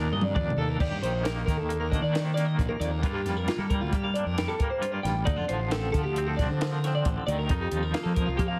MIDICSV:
0, 0, Header, 1, 5, 480
1, 0, Start_track
1, 0, Tempo, 447094
1, 856, Time_signature, 5, 2, 24, 8
1, 9228, End_track
2, 0, Start_track
2, 0, Title_t, "Clean electric guitar"
2, 0, Program_c, 0, 27
2, 0, Note_on_c, 0, 70, 78
2, 134, Note_off_c, 0, 70, 0
2, 135, Note_on_c, 0, 75, 75
2, 250, Note_off_c, 0, 75, 0
2, 250, Note_on_c, 0, 74, 64
2, 362, Note_off_c, 0, 74, 0
2, 375, Note_on_c, 0, 74, 75
2, 615, Note_off_c, 0, 74, 0
2, 622, Note_on_c, 0, 69, 73
2, 742, Note_off_c, 0, 69, 0
2, 742, Note_on_c, 0, 70, 68
2, 859, Note_off_c, 0, 70, 0
2, 862, Note_on_c, 0, 74, 85
2, 1097, Note_off_c, 0, 74, 0
2, 1101, Note_on_c, 0, 72, 73
2, 1336, Note_on_c, 0, 70, 76
2, 1338, Note_off_c, 0, 72, 0
2, 1554, Note_off_c, 0, 70, 0
2, 1567, Note_on_c, 0, 70, 73
2, 1688, Note_off_c, 0, 70, 0
2, 1688, Note_on_c, 0, 69, 62
2, 1932, Note_off_c, 0, 69, 0
2, 1937, Note_on_c, 0, 70, 67
2, 2056, Note_off_c, 0, 70, 0
2, 2058, Note_on_c, 0, 75, 70
2, 2167, Note_off_c, 0, 75, 0
2, 2171, Note_on_c, 0, 74, 68
2, 2407, Note_off_c, 0, 74, 0
2, 2407, Note_on_c, 0, 72, 70
2, 2509, Note_off_c, 0, 72, 0
2, 2513, Note_on_c, 0, 74, 68
2, 2632, Note_off_c, 0, 74, 0
2, 2632, Note_on_c, 0, 75, 66
2, 2759, Note_off_c, 0, 75, 0
2, 2759, Note_on_c, 0, 74, 73
2, 2887, Note_on_c, 0, 70, 68
2, 2888, Note_off_c, 0, 74, 0
2, 3003, Note_on_c, 0, 74, 75
2, 3012, Note_off_c, 0, 70, 0
2, 3122, Note_off_c, 0, 74, 0
2, 3122, Note_on_c, 0, 70, 68
2, 3359, Note_off_c, 0, 70, 0
2, 3359, Note_on_c, 0, 67, 71
2, 3616, Note_off_c, 0, 67, 0
2, 3616, Note_on_c, 0, 70, 67
2, 3735, Note_on_c, 0, 65, 73
2, 3737, Note_off_c, 0, 70, 0
2, 3851, Note_off_c, 0, 65, 0
2, 3851, Note_on_c, 0, 69, 64
2, 3972, Note_on_c, 0, 70, 75
2, 3975, Note_off_c, 0, 69, 0
2, 4092, Note_on_c, 0, 65, 71
2, 4095, Note_off_c, 0, 70, 0
2, 4216, Note_off_c, 0, 65, 0
2, 4216, Note_on_c, 0, 67, 83
2, 4334, Note_on_c, 0, 77, 66
2, 4337, Note_off_c, 0, 67, 0
2, 4445, Note_on_c, 0, 74, 64
2, 4456, Note_off_c, 0, 77, 0
2, 4566, Note_off_c, 0, 74, 0
2, 4566, Note_on_c, 0, 70, 72
2, 4811, Note_on_c, 0, 69, 72
2, 4813, Note_off_c, 0, 70, 0
2, 4930, Note_on_c, 0, 70, 71
2, 4935, Note_off_c, 0, 69, 0
2, 5043, Note_off_c, 0, 70, 0
2, 5047, Note_on_c, 0, 72, 67
2, 5280, Note_off_c, 0, 72, 0
2, 5280, Note_on_c, 0, 74, 73
2, 5404, Note_on_c, 0, 79, 72
2, 5410, Note_off_c, 0, 74, 0
2, 5634, Note_off_c, 0, 79, 0
2, 5639, Note_on_c, 0, 74, 81
2, 5887, Note_on_c, 0, 72, 78
2, 5889, Note_off_c, 0, 74, 0
2, 6132, Note_off_c, 0, 72, 0
2, 6132, Note_on_c, 0, 69, 79
2, 6347, Note_off_c, 0, 69, 0
2, 6359, Note_on_c, 0, 69, 76
2, 6472, Note_off_c, 0, 69, 0
2, 6476, Note_on_c, 0, 67, 68
2, 6726, Note_off_c, 0, 67, 0
2, 6726, Note_on_c, 0, 69, 69
2, 6837, Note_on_c, 0, 74, 63
2, 6853, Note_off_c, 0, 69, 0
2, 6955, Note_off_c, 0, 74, 0
2, 6955, Note_on_c, 0, 72, 68
2, 7212, Note_off_c, 0, 72, 0
2, 7212, Note_on_c, 0, 70, 71
2, 7344, Note_off_c, 0, 70, 0
2, 7344, Note_on_c, 0, 72, 75
2, 7456, Note_off_c, 0, 72, 0
2, 7460, Note_on_c, 0, 74, 66
2, 7585, Note_off_c, 0, 74, 0
2, 7585, Note_on_c, 0, 72, 79
2, 7700, Note_off_c, 0, 72, 0
2, 7700, Note_on_c, 0, 69, 70
2, 7797, Note_off_c, 0, 69, 0
2, 7801, Note_on_c, 0, 74, 75
2, 7928, Note_off_c, 0, 74, 0
2, 7932, Note_on_c, 0, 70, 72
2, 8168, Note_off_c, 0, 70, 0
2, 8168, Note_on_c, 0, 67, 70
2, 8403, Note_off_c, 0, 67, 0
2, 8403, Note_on_c, 0, 70, 69
2, 8521, Note_on_c, 0, 65, 77
2, 8530, Note_off_c, 0, 70, 0
2, 8625, Note_on_c, 0, 69, 64
2, 8649, Note_off_c, 0, 65, 0
2, 8741, Note_off_c, 0, 69, 0
2, 8746, Note_on_c, 0, 70, 74
2, 8869, Note_on_c, 0, 65, 67
2, 8881, Note_off_c, 0, 70, 0
2, 8988, Note_on_c, 0, 67, 80
2, 9003, Note_off_c, 0, 65, 0
2, 9099, Note_off_c, 0, 67, 0
2, 9103, Note_on_c, 0, 77, 71
2, 9228, Note_off_c, 0, 77, 0
2, 9228, End_track
3, 0, Start_track
3, 0, Title_t, "Clean electric guitar"
3, 0, Program_c, 1, 27
3, 0, Note_on_c, 1, 39, 71
3, 0, Note_on_c, 1, 46, 58
3, 0, Note_on_c, 1, 51, 64
3, 0, Note_on_c, 1, 58, 55
3, 0, Note_on_c, 1, 62, 60
3, 0, Note_on_c, 1, 67, 56
3, 365, Note_off_c, 1, 39, 0
3, 372, Note_off_c, 1, 62, 0
3, 377, Note_on_c, 1, 39, 68
3, 385, Note_on_c, 1, 62, 57
3, 620, Note_off_c, 1, 67, 0
3, 625, Note_on_c, 1, 69, 57
3, 831, Note_off_c, 1, 58, 0
3, 831, Note_off_c, 1, 69, 0
3, 832, Note_off_c, 1, 62, 0
3, 841, Note_off_c, 1, 39, 0
3, 854, Note_on_c, 1, 39, 65
3, 857, Note_off_c, 1, 46, 0
3, 869, Note_on_c, 1, 67, 67
3, 1077, Note_off_c, 1, 51, 0
3, 1090, Note_on_c, 1, 51, 61
3, 1325, Note_on_c, 1, 58, 57
3, 1557, Note_off_c, 1, 51, 0
3, 1570, Note_on_c, 1, 51, 62
3, 1811, Note_off_c, 1, 58, 0
3, 1815, Note_on_c, 1, 58, 56
3, 2036, Note_on_c, 1, 62, 52
3, 2274, Note_off_c, 1, 51, 0
3, 2287, Note_on_c, 1, 51, 65
3, 2514, Note_off_c, 1, 58, 0
3, 2527, Note_on_c, 1, 58, 58
3, 2749, Note_off_c, 1, 39, 0
3, 2762, Note_on_c, 1, 39, 56
3, 3001, Note_off_c, 1, 39, 0
3, 3005, Note_on_c, 1, 41, 64
3, 3224, Note_off_c, 1, 58, 0
3, 3235, Note_off_c, 1, 67, 0
3, 3243, Note_off_c, 1, 41, 0
3, 3247, Note_on_c, 1, 43, 72
3, 3252, Note_off_c, 1, 51, 0
3, 3259, Note_on_c, 1, 55, 58
3, 3265, Note_on_c, 1, 58, 62
3, 3271, Note_off_c, 1, 62, 0
3, 3276, Note_on_c, 1, 62, 61
3, 3280, Note_on_c, 1, 65, 67
3, 3485, Note_off_c, 1, 55, 0
3, 3497, Note_on_c, 1, 55, 60
3, 3742, Note_off_c, 1, 58, 0
3, 3763, Note_on_c, 1, 58, 60
3, 3963, Note_off_c, 1, 55, 0
3, 3976, Note_on_c, 1, 55, 63
3, 4208, Note_off_c, 1, 58, 0
3, 4221, Note_on_c, 1, 58, 60
3, 4461, Note_off_c, 1, 62, 0
3, 4465, Note_on_c, 1, 62, 55
3, 4692, Note_off_c, 1, 55, 0
3, 4705, Note_on_c, 1, 55, 68
3, 4940, Note_off_c, 1, 58, 0
3, 4959, Note_on_c, 1, 58, 54
3, 5152, Note_off_c, 1, 43, 0
3, 5165, Note_on_c, 1, 43, 76
3, 5167, Note_off_c, 1, 65, 0
3, 5171, Note_on_c, 1, 65, 56
3, 5405, Note_off_c, 1, 55, 0
3, 5418, Note_on_c, 1, 55, 61
3, 5623, Note_off_c, 1, 43, 0
3, 5630, Note_off_c, 1, 55, 0
3, 5634, Note_off_c, 1, 62, 0
3, 5641, Note_off_c, 1, 58, 0
3, 5641, Note_on_c, 1, 50, 71
3, 5642, Note_off_c, 1, 65, 0
3, 5647, Note_on_c, 1, 63, 57
3, 5760, Note_off_c, 1, 63, 0
3, 5760, Note_on_c, 1, 65, 54
3, 5889, Note_on_c, 1, 53, 66
3, 6137, Note_on_c, 1, 60, 60
3, 6369, Note_off_c, 1, 53, 0
3, 6373, Note_on_c, 1, 53, 62
3, 6632, Note_off_c, 1, 60, 0
3, 6636, Note_on_c, 1, 60, 58
3, 6872, Note_on_c, 1, 62, 59
3, 7089, Note_off_c, 1, 53, 0
3, 7102, Note_on_c, 1, 53, 61
3, 7334, Note_off_c, 1, 60, 0
3, 7347, Note_on_c, 1, 60, 53
3, 7570, Note_off_c, 1, 50, 0
3, 7582, Note_on_c, 1, 50, 60
3, 7820, Note_off_c, 1, 50, 0
3, 7820, Note_off_c, 1, 53, 0
3, 7830, Note_on_c, 1, 51, 65
3, 8034, Note_off_c, 1, 60, 0
3, 8036, Note_off_c, 1, 62, 0
3, 8049, Note_off_c, 1, 65, 0
3, 8055, Note_on_c, 1, 41, 75
3, 8061, Note_on_c, 1, 63, 64
3, 8064, Note_off_c, 1, 51, 0
3, 8289, Note_on_c, 1, 53, 62
3, 8525, Note_on_c, 1, 58, 60
3, 8758, Note_off_c, 1, 53, 0
3, 8771, Note_on_c, 1, 53, 57
3, 9014, Note_off_c, 1, 58, 0
3, 9018, Note_on_c, 1, 58, 61
3, 9228, Note_off_c, 1, 41, 0
3, 9228, Note_off_c, 1, 53, 0
3, 9228, Note_off_c, 1, 58, 0
3, 9228, Note_off_c, 1, 63, 0
3, 9228, End_track
4, 0, Start_track
4, 0, Title_t, "Fingered electric bass"
4, 0, Program_c, 2, 33
4, 0, Note_on_c, 2, 39, 86
4, 115, Note_off_c, 2, 39, 0
4, 127, Note_on_c, 2, 43, 80
4, 347, Note_off_c, 2, 43, 0
4, 382, Note_on_c, 2, 41, 77
4, 595, Note_off_c, 2, 41, 0
4, 605, Note_on_c, 2, 39, 80
4, 826, Note_off_c, 2, 39, 0
4, 861, Note_on_c, 2, 39, 90
4, 968, Note_off_c, 2, 39, 0
4, 973, Note_on_c, 2, 43, 72
4, 1084, Note_off_c, 2, 43, 0
4, 1095, Note_on_c, 2, 34, 78
4, 1535, Note_off_c, 2, 34, 0
4, 1580, Note_on_c, 2, 51, 83
4, 1678, Note_off_c, 2, 51, 0
4, 1684, Note_on_c, 2, 39, 74
4, 2062, Note_off_c, 2, 39, 0
4, 2062, Note_on_c, 2, 38, 79
4, 2156, Note_off_c, 2, 38, 0
4, 2162, Note_on_c, 2, 51, 77
4, 2727, Note_off_c, 2, 51, 0
4, 2778, Note_on_c, 2, 34, 77
4, 2888, Note_off_c, 2, 34, 0
4, 3006, Note_on_c, 2, 39, 99
4, 3231, Note_off_c, 2, 39, 0
4, 3256, Note_on_c, 2, 43, 91
4, 3477, Note_off_c, 2, 43, 0
4, 3493, Note_on_c, 2, 41, 76
4, 3715, Note_off_c, 2, 41, 0
4, 3845, Note_on_c, 2, 55, 86
4, 4071, Note_off_c, 2, 55, 0
4, 4097, Note_on_c, 2, 38, 81
4, 4208, Note_off_c, 2, 38, 0
4, 4214, Note_on_c, 2, 55, 86
4, 4436, Note_off_c, 2, 55, 0
4, 4572, Note_on_c, 2, 41, 80
4, 4795, Note_off_c, 2, 41, 0
4, 5415, Note_on_c, 2, 33, 85
4, 5637, Note_off_c, 2, 33, 0
4, 5656, Note_on_c, 2, 38, 91
4, 5765, Note_off_c, 2, 38, 0
4, 5771, Note_on_c, 2, 41, 73
4, 5885, Note_off_c, 2, 41, 0
4, 5895, Note_on_c, 2, 33, 84
4, 6337, Note_off_c, 2, 33, 0
4, 6378, Note_on_c, 2, 50, 86
4, 6489, Note_off_c, 2, 50, 0
4, 6496, Note_on_c, 2, 38, 81
4, 6860, Note_on_c, 2, 36, 76
4, 6877, Note_off_c, 2, 38, 0
4, 6965, Note_off_c, 2, 36, 0
4, 6971, Note_on_c, 2, 50, 79
4, 7532, Note_off_c, 2, 50, 0
4, 7570, Note_on_c, 2, 33, 82
4, 7684, Note_off_c, 2, 33, 0
4, 7809, Note_on_c, 2, 38, 97
4, 8033, Note_off_c, 2, 38, 0
4, 8052, Note_on_c, 2, 41, 89
4, 8275, Note_off_c, 2, 41, 0
4, 8284, Note_on_c, 2, 39, 75
4, 8510, Note_off_c, 2, 39, 0
4, 8645, Note_on_c, 2, 53, 82
4, 8870, Note_off_c, 2, 53, 0
4, 8883, Note_on_c, 2, 36, 89
4, 8999, Note_off_c, 2, 36, 0
4, 9005, Note_on_c, 2, 53, 86
4, 9228, Note_off_c, 2, 53, 0
4, 9228, End_track
5, 0, Start_track
5, 0, Title_t, "Drums"
5, 230, Note_on_c, 9, 48, 76
5, 338, Note_off_c, 9, 48, 0
5, 385, Note_on_c, 9, 36, 95
5, 388, Note_on_c, 9, 47, 70
5, 493, Note_off_c, 9, 36, 0
5, 495, Note_off_c, 9, 47, 0
5, 540, Note_on_c, 9, 45, 84
5, 648, Note_off_c, 9, 45, 0
5, 862, Note_on_c, 9, 36, 105
5, 864, Note_on_c, 9, 49, 105
5, 969, Note_off_c, 9, 36, 0
5, 971, Note_off_c, 9, 49, 0
5, 1111, Note_on_c, 9, 42, 67
5, 1218, Note_off_c, 9, 42, 0
5, 1345, Note_on_c, 9, 42, 89
5, 1352, Note_on_c, 9, 38, 105
5, 1452, Note_off_c, 9, 42, 0
5, 1459, Note_off_c, 9, 38, 0
5, 1584, Note_on_c, 9, 36, 68
5, 1592, Note_on_c, 9, 42, 65
5, 1598, Note_on_c, 9, 38, 30
5, 1691, Note_off_c, 9, 36, 0
5, 1699, Note_off_c, 9, 42, 0
5, 1706, Note_off_c, 9, 38, 0
5, 1828, Note_on_c, 9, 42, 83
5, 1935, Note_off_c, 9, 42, 0
5, 2064, Note_on_c, 9, 36, 62
5, 2076, Note_on_c, 9, 42, 56
5, 2171, Note_off_c, 9, 36, 0
5, 2183, Note_off_c, 9, 42, 0
5, 2309, Note_on_c, 9, 42, 82
5, 2316, Note_on_c, 9, 38, 97
5, 2417, Note_off_c, 9, 42, 0
5, 2423, Note_off_c, 9, 38, 0
5, 2549, Note_on_c, 9, 42, 66
5, 2555, Note_on_c, 9, 38, 32
5, 2656, Note_off_c, 9, 42, 0
5, 2663, Note_off_c, 9, 38, 0
5, 2780, Note_on_c, 9, 36, 102
5, 2786, Note_on_c, 9, 42, 82
5, 2887, Note_off_c, 9, 36, 0
5, 2893, Note_off_c, 9, 42, 0
5, 3021, Note_on_c, 9, 42, 61
5, 3128, Note_off_c, 9, 42, 0
5, 3256, Note_on_c, 9, 36, 108
5, 3259, Note_on_c, 9, 42, 83
5, 3363, Note_off_c, 9, 36, 0
5, 3366, Note_off_c, 9, 42, 0
5, 3498, Note_on_c, 9, 42, 62
5, 3504, Note_on_c, 9, 38, 33
5, 3605, Note_off_c, 9, 42, 0
5, 3612, Note_off_c, 9, 38, 0
5, 3734, Note_on_c, 9, 42, 89
5, 3740, Note_on_c, 9, 38, 108
5, 3841, Note_off_c, 9, 42, 0
5, 3848, Note_off_c, 9, 38, 0
5, 3976, Note_on_c, 9, 36, 73
5, 3977, Note_on_c, 9, 42, 59
5, 4083, Note_off_c, 9, 36, 0
5, 4084, Note_off_c, 9, 42, 0
5, 4216, Note_on_c, 9, 42, 92
5, 4217, Note_on_c, 9, 36, 104
5, 4323, Note_off_c, 9, 42, 0
5, 4324, Note_off_c, 9, 36, 0
5, 4460, Note_on_c, 9, 42, 58
5, 4568, Note_off_c, 9, 42, 0
5, 4700, Note_on_c, 9, 42, 86
5, 4707, Note_on_c, 9, 38, 99
5, 4808, Note_off_c, 9, 42, 0
5, 4814, Note_off_c, 9, 38, 0
5, 4936, Note_on_c, 9, 42, 72
5, 4939, Note_on_c, 9, 36, 70
5, 5044, Note_off_c, 9, 42, 0
5, 5047, Note_off_c, 9, 36, 0
5, 5181, Note_on_c, 9, 42, 92
5, 5288, Note_off_c, 9, 42, 0
5, 5426, Note_on_c, 9, 42, 70
5, 5432, Note_on_c, 9, 38, 35
5, 5533, Note_off_c, 9, 42, 0
5, 5539, Note_off_c, 9, 38, 0
5, 5655, Note_on_c, 9, 42, 90
5, 5660, Note_on_c, 9, 36, 103
5, 5762, Note_off_c, 9, 42, 0
5, 5767, Note_off_c, 9, 36, 0
5, 5893, Note_on_c, 9, 42, 73
5, 6000, Note_off_c, 9, 42, 0
5, 6134, Note_on_c, 9, 42, 91
5, 6140, Note_on_c, 9, 38, 112
5, 6241, Note_off_c, 9, 42, 0
5, 6247, Note_off_c, 9, 38, 0
5, 6379, Note_on_c, 9, 42, 59
5, 6380, Note_on_c, 9, 36, 70
5, 6486, Note_off_c, 9, 42, 0
5, 6487, Note_off_c, 9, 36, 0
5, 6615, Note_on_c, 9, 42, 88
5, 6723, Note_off_c, 9, 42, 0
5, 6860, Note_on_c, 9, 36, 63
5, 6863, Note_on_c, 9, 42, 59
5, 6869, Note_on_c, 9, 38, 30
5, 6967, Note_off_c, 9, 36, 0
5, 6970, Note_off_c, 9, 42, 0
5, 6976, Note_off_c, 9, 38, 0
5, 7097, Note_on_c, 9, 42, 84
5, 7104, Note_on_c, 9, 38, 105
5, 7205, Note_off_c, 9, 42, 0
5, 7211, Note_off_c, 9, 38, 0
5, 7343, Note_on_c, 9, 42, 64
5, 7350, Note_on_c, 9, 38, 34
5, 7451, Note_off_c, 9, 42, 0
5, 7457, Note_off_c, 9, 38, 0
5, 7571, Note_on_c, 9, 42, 89
5, 7576, Note_on_c, 9, 36, 102
5, 7679, Note_off_c, 9, 42, 0
5, 7684, Note_off_c, 9, 36, 0
5, 7820, Note_on_c, 9, 42, 64
5, 7928, Note_off_c, 9, 42, 0
5, 8044, Note_on_c, 9, 42, 86
5, 8051, Note_on_c, 9, 36, 100
5, 8152, Note_off_c, 9, 42, 0
5, 8159, Note_off_c, 9, 36, 0
5, 8283, Note_on_c, 9, 42, 66
5, 8390, Note_off_c, 9, 42, 0
5, 8525, Note_on_c, 9, 42, 88
5, 8532, Note_on_c, 9, 38, 108
5, 8633, Note_off_c, 9, 42, 0
5, 8639, Note_off_c, 9, 38, 0
5, 8765, Note_on_c, 9, 42, 60
5, 8767, Note_on_c, 9, 36, 67
5, 8872, Note_off_c, 9, 42, 0
5, 8874, Note_off_c, 9, 36, 0
5, 9007, Note_on_c, 9, 36, 97
5, 9011, Note_on_c, 9, 42, 92
5, 9115, Note_off_c, 9, 36, 0
5, 9118, Note_off_c, 9, 42, 0
5, 9228, End_track
0, 0, End_of_file